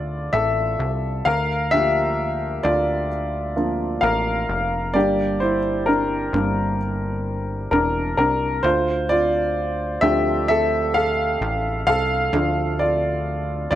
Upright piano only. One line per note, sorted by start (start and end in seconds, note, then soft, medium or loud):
0.00 1.28 F4 medium
0.00 1.28 D5 loud
0.33 1.23 A4 medium
0.33 1.28 E5 loud
1.25 1.70 A#4 medium
1.25 1.73 F5 loud
1.71 3.07 F3 medium
1.71 3.07 A#3 soft
1.71 3.07 D4 medium
1.71 2.61 G4 medium
1.71 2.60 E5 loud
2.63 3.53 F4 medium
2.63 3.52 D5 medium
3.56 3.99 F3 medium
3.56 3.99 A#3 soft
3.56 3.99 D4 medium
4.01 4.92 A#4 medium
4.01 4.90 F5 loud
4.94 5.56 G3 medium
4.94 5.57 A#3 soft
4.94 5.57 D4 medium
4.94 5.39 G4 medium
4.94 5.42 D5 medium
5.40 5.85 E4 medium
5.40 5.88 C5 medium
5.86 6.33 D4 medium
5.86 7.70 A#4 medium
6.34 6.76 G3 medium
6.34 6.76 A#3 soft
6.34 6.76 D4 medium
7.71 8.16 D4 medium
7.71 8.16 A#4 medium
8.17 8.62 D4 medium
8.17 8.66 A#4 loud
8.63 9.08 F4 medium
8.63 9.07 C5 loud
9.09 9.99 F4 medium
9.09 10.05 D5 loud
10.01 12.32 F3 medium
10.01 12.32 A3 medium
10.01 12.33 D4 medium
10.01 10.46 G4 medium
10.01 10.47 E5 loud
10.48 10.93 A4 medium
10.48 10.96 E5 loud
10.94 11.84 A4 medium
10.94 11.85 F5 loud
11.87 12.77 A4 medium
11.87 12.82 F5 loud
12.34 13.75 F3 medium
12.34 13.75 A3 medium
12.34 13.75 D4 medium
12.79 13.69 F4 medium
12.79 13.69 D5 medium
13.71 13.75 D5 loud